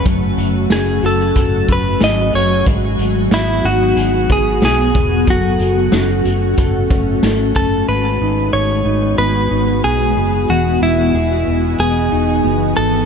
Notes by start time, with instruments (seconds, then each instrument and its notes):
Already playing: ambient pad F#3 A3 F#4, clean electric guitar C#4 F#4
0.05 fingered electric bass F#1, clean electric guitar F#3, kick, closed hi-hat
0.38 fingered electric bass F#1, clean electric guitar F#4, closed hi-hat
0.70 fingered electric bass F#1, clean electric guitar C#4 G#4, snare, closed hi-hat
1.02 fingered electric bass F#1, clean electric guitar F#4 A4, closed hi-hat
1.35 fingered electric bass F#1, kick, closed hi-hat
1.68 fingered electric bass F#1, clean electric guitar C#4, kick, closed hi-hat
1.72 clean electric guitar B4
2.00 fingered electric bass G#1, clean electric guitar G#4 D#5, snare, closed hi-hat
2.33 fingered electric bass F#1, clean electric guitar C#4 C#5, closed hi-hat
2.66 fingered electric bass G#1, clean electric guitar G#2 G#4, ambient pad B3, kick, closed hi-hat
2.99 fingered electric bass G#1, closed hi-hat
3.31 fingered electric bass G#1, clean electric guitar B3 E4, snare, closed hi-hat
3.64 fingered electric bass G#1, clean electric guitar D#4 F#4, closed hi-hat
3.97 fingered electric bass G#1, clean electric guitar G#4, closed hi-hat
4.30 fingered electric bass G#1, clean electric guitar B3 G#4, kick, closed hi-hat
4.62 fingered electric bass B1, clean electric guitar G#4, snare, closed hi-hat
4.94 fingered electric bass E1, clean electric guitar B3, kick, closed hi-hat
5.27 fingered electric bass F#1, clean electric guitar F#3 F#4 A4, ambient pad A3 C#4, kick, closed hi-hat
5.59 fingered electric bass F#1, clean electric guitar F#4, closed hi-hat
5.92 fingered electric bass F#1, clean electric guitar C#4, snare, closed hi-hat
6.25 fingered electric bass F#1, clean electric guitar F#4, closed hi-hat
6.58 fingered electric bass F#1, clean electric guitar A4, kick, closed hi-hat
6.90 fingered electric bass F#1, clean electric guitar C#4, kick, closed hi-hat
7.23 fingered electric bass G#1, clean electric guitar A4, snare, closed hi-hat
7.55 fingered electric bass F#1, clean electric guitar C#4 A4, kick, closed hi-hat
7.88 fingered electric bass G#1, clean electric guitar G#2 G#4 B4, ambient pad G#3 B3 F#4
8.21 fingered electric bass G#1, clean electric guitar D#4
8.53 fingered electric bass G#1, clean electric guitar G#4 C#5
8.85 fingered electric bass G#1, clean electric guitar D#4
9.18 fingered electric bass G#1, clean electric guitar B3 B4
9.50 fingered electric bass G#1, clean electric guitar D#4
9.83 fingered electric bass B1, clean electric guitar B3 G#4
10.17 fingered electric bass F#1, clean electric guitar G#4
10.49 fingered electric bass E1, clean electric guitar E3 F#4 G#4, ambient pad E3 F#4 D#5 G#5
10.82 fingered electric bass E1, clean electric guitar E4
11.14 fingered electric bass E1, clean electric guitar G#4
11.48 fingered electric bass E1
11.79 fingered electric bass E1, clean electric guitar B3 G#4
12.12 fingered electric bass E1, clean electric guitar D#4
12.44 fingered electric bass F#1, clean electric guitar B3
12.77 fingered electric bass G#1, clean electric guitar A4